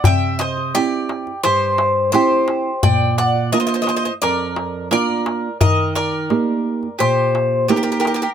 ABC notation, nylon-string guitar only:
X:1
M:4/4
L:1/8
Q:1/4=86
K:none
V:1 name="Nylon-string guitar"
C,2 [CEG]2 G,,2 [CEG]2 | _B,,2 [_B,DF]2 F,,2 [B,DF]2 | _E,2 [_B,_EG]2 _B,,2 [B,EG]2 |]